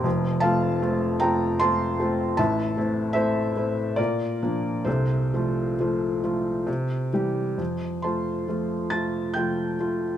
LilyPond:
<<
  \new Staff \with { instrumentName = "Felt piano" } { \time 3/4 \key f \major \tempo 4 = 70 r8 <f'' a''>4 <g'' bes''>8 <a'' c'''>4 | <e'' a''>4 <c'' e''>4 <bes' d''>4 | <a' c''>2~ <a' c''>8 r8 | r8 <c'' a'' c'''>4 <a'' a'''>8 <g'' g'''>4 | }
  \new Staff \with { instrumentName = "Felt piano" } { \time 3/4 \key f \major <f,, f,>8 <a c' f'>8 <a c' f'>8 <a c' f'>8 <a c' f'>8 <a c' f'>8 | <a,, a,>8 <a c' e'>8 <a c' e'>8 <a c' e'>8 bes,8 <f bes d'>8 | <c, c>8 <f a f'>8 <f a f'>8 <f a f'>8 c8 <e g g'>8 | f,8 <a f'>8 <f a f'>8 <a f'>8 <f a f'>8 <a f'>8 | }
>>